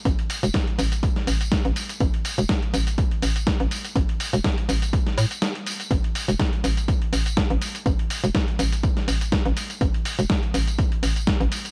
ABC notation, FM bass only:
X:1
M:4/4
L:1/16
Q:"Swing 16ths" 1/4=123
K:Clyd
V:1 name="FM bass" clef=bass
A,,, z2 E,,, z2 A,,,2 z2 A,,,2 z A,,, z2 | A,,, z2 E,,, z2 A,,,2 z2 A,,,2 z A,,, z2 | A,,, z2 E,,, z2 A,,,2 z2 A,, z4 z | A,,, z2 E,,, z2 A,,,2 z2 A,,,2 z A,,, z2 |
A,,, z2 E,,, z2 A,,,2 z2 A,,,2 z A,,, z2 | A,,, z2 E,,, z2 A,,,2 z2 A,,,2 z A,,, z2 |]